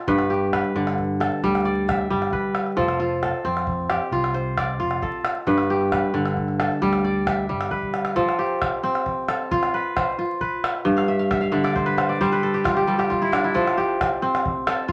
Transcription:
Already playing: kora F4 A4 C5 D5
0.08 fingered electric bass G1, kora G2 B4, calabash thump, calabash click
0.18 calabash click
0.30 kora G4
0.53 kora B4, calabash thump, calabash click
0.75 fingered electric bass G2, kora D3
0.87 calabash click
0.98 calabash thump
1.20 kora A4, calabash click
1.43 fingered electric bass D2, kora G3, calabash thump
1.55 calabash click
1.65 kora D5
1.88 kora E5, calabash thump, calabash click
2.10 fingered electric bass G1, kora G3
2.22 calabash click
2.32 kora B4, calabash thump
2.55 calabash click
2.66 calabash click
2.77 fingered electric bass F1, kora F3 A4, calabash thump, calabash click
2.88 calabash click
3.00 kora F4
3.23 kora A4, calabash thump, calabash click
3.44 fingered electric bass F2, kora C4
3.57 calabash click
3.67 calabash thump
3.90 kora G4, calabash click
4.11 fingered electric bass C2, kora F4, calabash thump
4.24 calabash click
4.34 kora C5
4.57 kora D5, calabash thump, calabash click
4.80 fingered electric bass F1, kora F4
4.91 calabash click
5.02 kora A4, calabash thump
5.25 calabash click
5.36 calabash click
5.47 fingered electric bass G1, kora G2 B4, calabash thump, calabash click
5.58 calabash click
5.70 kora G4, calabash click
5.81 calabash click
5.92 kora B4, calabash thump, calabash click
6.14 fingered electric bass G2, kora D3, calabash click
6.25 calabash click
6.37 calabash thump
6.48 calabash click
6.60 kora A4, calabash click
6.71 calabash click
6.82 fingered electric bass D2, kora G3, calabash thump
6.93 calabash click
7.04 kora D5
7.27 kora E5, calabash thump, calabash click
7.49 fingered electric bass G1, kora G3
7.61 calabash click
7.71 kora B4, calabash thump
7.83 calabash thump
7.94 calabash click
8.05 calabash click
8.16 kora F3 A4, calabash thump, calabash click
8.29 calabash click
8.39 kora G4
8.62 calabash thump, calabash click
8.83 kora C4
8.95 calabash click
9.06 calabash thump
9.28 kora A4, calabash click
9.51 kora F4, calabash thump
9.63 calabash click
9.74 kora B4
9.96 kora C5, calabash thump, calabash click
10.18 kora F4
10.41 kora B4, calabash thump
10.64 calabash click
10.75 calabash click
10.85 kora G2, calabash thump, calabash click
10.97 kora F5, calabash click
11.08 kora E5
11.19 kora F5
11.31 kora E5, calabash thump, calabash click
11.41 kora F5
11.52 kora D3 E5
11.64 kora D5, calabash click
11.75 kora C5, calabash thump
11.86 kora B4
11.97 kora C5, calabash click
12.09 kora D5
12.21 kora G3 C5, calabash thump
12.32 kora B4
12.43 kora A4
12.54 kora G4
12.64 kora F4, calabash thump, calabash click
12.77 kora G4
12.87 kora G3 A4
12.99 kora G4, calabash click
13.10 kora F4, calabash thump
13.22 kora E4
13.32 kora D4, calabash click
13.44 kora E4, calabash click
13.54 kora F3 A4, calabash thump, calabash click
13.67 calabash click
13.77 kora G4
14.01 calabash thump, calabash click
14.22 kora C4
14.35 calabash click
14.45 calabash thump
14.67 kora A4, calabash click
14.88 kora F4, calabash thump

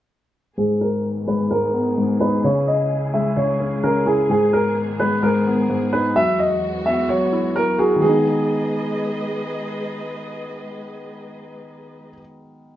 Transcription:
0.58 felt piano G#2, string section G#2 D#3 B3 G#4, grand piano G#4
0.81 grand piano A#4
1.27 felt piano G#3, grand piano B4
1.51 felt piano G#2, grand piano A#4
1.74 felt piano B3
1.98 felt piano G#2
2.20 felt piano D#4, grand piano B4
2.44 string section C#2 C#3 E4, felt piano C#3, grand piano C#5
2.67 grand piano D#5
3.14 felt piano G#3, grand piano E5
3.37 felt piano C#3, grand piano C#5
3.60 felt piano C#4
3.83 felt piano C#3, grand piano A#4
4.06 felt piano E4, grand piano G#4
4.30 felt piano G#2, string section G#2 D#3 B3, grand piano G#4
4.53 grand piano A#4
5.00 felt piano G#3, grand piano B4
5.23 felt piano G#2, grand piano A#4
5.46 felt piano B3
5.69 felt piano G#2
5.93 felt piano D#4, grand piano B4
6.16 string section E2 E3 G#3 F#4, felt piano F#3, grand piano E5
6.39 grand piano D#5
6.86 felt piano B3, grand piano E5
7.09 felt piano F#3, grand piano C#5
7.33 felt piano E4
7.56 felt piano F#3, grand piano A#4
7.78 felt piano F#4, grand piano G#4
7.96 felt piano D#3 G#3
8.02 string section G#3 G#4 B4 D#5, felt piano B3, grand piano G#4
8.08 felt piano D#4

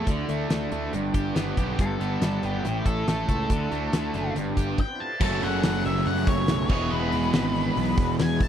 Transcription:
0.07 picked electric bass D2, overdriven electric guitar D3, tonewheel organ A3 E4 D5, kick, closed hi-hat
0.29 picked electric bass D2, overdriven electric guitar A3, closed hi-hat
0.50 picked electric bass D2, overdriven electric guitar D3, snare, closed hi-hat
0.72 picked electric bass D2, overdriven electric guitar A3, closed hi-hat
0.92 picked electric bass G1, overdriven electric guitar G2, tonewheel organ B3 G4 D5, closed hi-hat
1.14 picked electric bass G1, overdriven electric guitar G4, kick, closed hi-hat
1.35 picked electric bass G1, overdriven electric guitar B3, snare, closed hi-hat
1.57 picked electric bass B1, overdriven electric guitar G4, kick, closed hi-hat
1.77 picked electric bass G1, overdriven electric guitar G2, tonewheel organ B3 G4 D5, kick, closed hi-hat
1.81 lead electric guitar A4
2.00 picked electric bass G1, overdriven electric guitar B3, closed hi-hat
2.21 picked electric bass G1, overdriven electric guitar G3, snare, closed hi-hat
2.43 picked electric bass G1, overdriven electric guitar B3, lead electric guitar G4, closed hi-hat
2.62 picked electric bass A1, overdriven electric guitar A2, tonewheel organ A3 E4 C#5, closed hi-hat
2.86 picked electric bass A1, overdriven electric guitar A4, lead electric guitar A4, kick, closed hi-hat
3.07 picked electric bass A1, overdriven electric guitar A3, lead electric guitar A4, snare, closed hi-hat
3.28 picked electric bass C#2, overdriven electric guitar A4, kick, closed hi-hat
3.49 picked electric bass D2, overdriven electric guitar D3, tonewheel organ A3 E4 D5, kick, closed hi-hat
3.71 picked electric bass D2, overdriven electric guitar A3, closed hi-hat
3.93 picked electric bass D2, overdriven electric guitar D3, snare, closed hi-hat
4.14 picked electric bass F#1, overdriven electric guitar A3, closed hi-hat
4.35 picked electric bass G1, overdriven electric guitar G2, tonewheel organ B3 G4 D5, closed hi-hat
4.57 picked electric bass G1, overdriven electric guitar G4, kick, closed hi-hat
4.78 lead electric guitar G5, kick, crash
4.87 tonewheel organ B3 C4
4.92 tonewheel organ D4 E4
4.98 tonewheel organ F4 G4, lead electric guitar A5
5.03 tonewheel organ A4 B4
5.09 tonewheel organ C5 D5
5.14 tonewheel organ E5 F5
5.20 picked electric bass F#1, overdriven electric guitar F#2 C#3 F#3 A3 C#4, tonewheel organ A3 F#4 C#5, lead electric guitar A5, kick, crash
5.24 overdriven electric guitar A4
5.42 picked electric bass F#1, lead electric guitar F#5, open hi-hat
5.63 picked electric bass F#1, lead electric guitar F#5, snare, open hi-hat
5.85 picked electric bass F#1, lead electric guitar E5, open hi-hat
6.06 picked electric bass F#2, lead electric guitar F#5, open hi-hat
6.27 picked electric bass F#1, lead electric guitar C#5, kick, open hi-hat
6.48 picked electric bass B1, snare, open hi-hat
6.69 picked electric bass E1, overdriven electric guitar E2 B2 E3 G#3 B3, tonewheel organ A3 F4 C5, lead electric guitar C#5, kick, crash
6.73 overdriven electric guitar G#4
6.84 tonewheel organ G#3 E4 B4
6.91 picked electric bass E1, lead electric guitar B4
7.12 picked electric bass E1, open hi-hat
7.33 picked electric bass G#1, snare, open hi-hat
7.55 open hi-hat
7.77 picked electric bass B1, open hi-hat
7.97 picked electric bass E1, kick, open hi-hat
8.19 picked electric bass E2, lead electric guitar G#5, snare, open hi-hat
8.40 picked electric bass E1, lead electric guitar A5, kick, open hi-hat

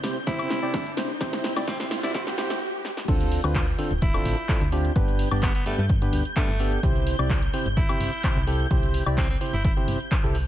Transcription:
Already playing: string machine G6, riser
0.03 synth stab C3 C4 E4 G4 C5, snare, open hi-hat
0.27 synth stab C3 C4 E4 G4 C5, alto saxophone E4, kick, snare, closed hi-hat
0.39 closed hi-hat, high woodblock
0.50 snare, open hi-hat
0.63 synth stab C3 C4 E4 G4 D5
0.74 kick, snare, closed hi-hat
0.86 closed hi-hat
0.97 synth stab C3 C4 E4 G4 C5, snare, open hi-hat
1.10 closed hi-hat
1.21 synth stab C3 C4 E4 G4 C5, kick, snare, closed hi-hat
1.33 snare, closed hi-hat
1.44 snare, open hi-hat
1.56 synth stab C3 C4 E4 G4 D5, snare, closed hi-hat, high woodblock
1.68 synth stab C3 C4 E4 G4 C5, alto saxophone C4, kick, snare, closed hi-hat
1.80 alto saxophone C4, snare, closed hi-hat
1.91 snare, open hi-hat
2.03 synth stab C3 C4 E4 G4 D5, alto saxophone E4, snare
2.14 synth stab C3 C4 E4 G4 C5, alto saxophone E4, kick, snare, closed hi-hat
2.27 snare, closed hi-hat
2.38 synth stab C3 C4 E4 G4 C5, snare, open hi-hat
2.50 snare
2.85 snare
2.97 snare
3.08 fm bass D2, synth stab D3 C4 D4 F4 A4, string machine G6, kick, closed hi-hat, crash
3.21 closed hi-hat
3.32 open hi-hat
3.44 fm bass D2, synth stab D3 C4 D4 F4 B4, high woodblock
3.55 kick, clap, closed hi-hat
3.67 closed hi-hat
3.79 synth stab D3 C4 D4 F4 A4, open hi-hat
3.91 fm bass D1, closed hi-hat
4.02 alto saxophone E4, kick, closed hi-hat
4.14 synth stab D3 C4 D4 F4 A4, closed hi-hat, high woodblock
4.25 fm bass A1, open hi-hat
4.38 closed hi-hat
4.49 synth stab D3 C4 D4 F4 A4, kick, clap, closed hi-hat
4.61 fm bass D2, closed hi-hat
4.72 synth stab C4 D4 F4 G4, open hi-hat
4.85 closed hi-hat
4.96 fm bass G1, synth stab G2 B3 D4 G4 B4, kick, closed hi-hat
5.08 closed hi-hat
5.19 open hi-hat
5.31 fm bass G1, synth stab G2 B3 D4 G4 D5, high woodblock
5.42 alto saxophone B3, kick, clap, closed hi-hat
5.55 alto saxophone B3, closed hi-hat
5.66 synth stab G2 B3 D4 G4 B4, alto saxophone A3, open hi-hat
5.78 fm bass G2, alto saxophone A3, closed hi-hat
5.89 kick, closed hi-hat
6.02 synth stab G2 B3 D4 G4 B4, closed hi-hat
6.13 fm bass D2, open hi-hat
6.25 closed hi-hat
6.36 synth stab G2 B3 D4 G4 B4, alto saxophone A3, kick, clap, closed hi-hat
6.49 fm bass G1, closed hi-hat
6.60 synth stab B3 D4 G4 A4, open hi-hat
6.72 closed hi-hat
6.83 fm bass C2, synth stab C3 C4 E4 G4 C5, kick, closed hi-hat
6.96 closed hi-hat
7.07 open hi-hat
7.19 fm bass C2, synth stab C3 C4 E4 G4 D5, high woodblock
7.30 kick, clap, closed hi-hat
7.42 closed hi-hat
7.54 synth stab C3 C4 E4 G4 C5, open hi-hat
7.66 fm bass G1, closed hi-hat
7.77 alto saxophone E4, kick, closed hi-hat
7.89 synth stab C3 C4 E4 G4 C5, closed hi-hat, high woodblock
8.00 fm bass G1, open hi-hat
8.24 synth stab C3 C4 E4 G4 C5, kick, clap, closed hi-hat
8.36 fm bass C2, closed hi-hat
8.47 synth stab C3 C4 E4 G4 A4, open hi-hat
8.60 closed hi-hat
8.71 fm bass C2, synth stab C3 C4 E4 G4 C5, kick, closed hi-hat
8.83 closed hi-hat
8.94 open hi-hat
9.06 fm bass C2, synth stab C3 C4 E4 G4 D5, high woodblock
9.18 alto saxophone C4, kick, clap, closed hi-hat
9.30 alto saxophone C4, closed hi-hat
9.41 synth stab C3 C4 E4 G4 C5, open hi-hat
9.53 fm bass G1, alto saxophone E4, closed hi-hat
9.65 alto saxophone E4, kick, closed hi-hat
9.77 synth stab C3 C4 E4 G4 C5, closed hi-hat
9.88 fm bass G1, open hi-hat
10.00 closed hi-hat
10.11 kick, clap, closed hi-hat
10.24 fm bass C2, synth stab C3 C4 E4 G4 A4, closed hi-hat
10.35 open hi-hat

